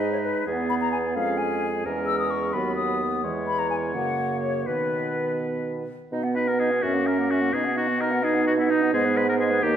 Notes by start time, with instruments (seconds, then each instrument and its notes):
Already playing: bassoon G#2, french horn G#3, clarinet D#4, oboe B4
0.00 flute D#5
0.12 flute C#5
0.23 flute B4
0.47 bassoon E2, clarinet B3, french horn B3, oboe G#4
0.69 flute B5
0.81 flute A#5
0.92 flute G#5
1.15 bassoon F2, french horn G#3, clarinet C#4, oboe G#4, flute F5
1.37 flute G#5
1.85 bassoon E2, french horn G#3, clarinet C#4, oboe A#4
2.06 flute E6
2.19 flute D#6
2.31 flute C#6
2.53 bassoon D#2, french horn F#3, clarinet B3, oboe B4, flute B5
2.76 flute D#6
3.24 bassoon E2, french horn E3, clarinet G#3, oboe C#5
3.47 flute B5
3.59 flute A#5
3.70 flute G#5
3.94 bassoon F#2, french horn C#3, clarinet A#3, flute F#5
4.43 flute C#5
4.66 bassoon B2, french horn D#3, clarinet B3, flute B4, oboe B4
6.12 bassoon B2, french horn B3, clarinet D#4, flute D#5
6.24 clarinet B3, flute F#5
6.35 clarinet D#4, oboe B4, flute D#5
6.47 clarinet B3, oboe A#4, flute F#5
6.59 clarinet D#4, oboe G#4, flute D#5
6.71 clarinet B3, flute F#5
6.82 bassoon F#2, clarinet C#4, french horn C#4, oboe F#4, flute E5
6.94 clarinet A#3, flute F#5
7.06 clarinet C#4, oboe A#4, flute E5
7.18 clarinet A#3, flute F#5
7.30 clarinet C#4, oboe F#4, flute E5
7.41 clarinet A#3, flute F#5
7.53 bassoon B2, french horn B3, clarinet D#4, oboe G#4, flute D#5
7.64 clarinet B3, flute F#5
7.76 clarinet D#4, oboe F#4, flute D#5
7.88 clarinet B3, flute F#5
7.99 clarinet D#4, oboe A#4, flute D#5
8.11 clarinet B3, flute F#5
8.23 clarinet D#4, french horn D#4, oboe G#4, flute D#5
8.34 clarinet B3, flute F#5
8.46 clarinet D#4, oboe F#4, flute D#5
8.58 clarinet B3, oboe E4, flute F#5
8.70 clarinet D#4, oboe D#4, flute D#5
8.82 clarinet B3, flute F#5
8.93 bassoon G#2, clarinet G#3, french horn B3, oboe G#4, flute D#5
9.05 clarinet B3, flute B4
9.16 clarinet G#3, oboe B4, flute D#5
9.28 clarinet B3, oboe A#4, flute B4
9.39 clarinet G#3, oboe G#4, flute D#5
9.51 clarinet B3, flute B4
9.63 bassoon D#2, french horn A#3, clarinet D#4, oboe G4, flute D#5